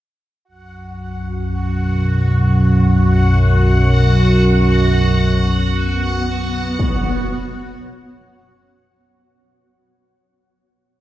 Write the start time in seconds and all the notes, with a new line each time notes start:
0.45 B1 F#2 F#4 F#5
4.72 B3
6.11 F#4
6.60 C#5 F#5
6.79 impact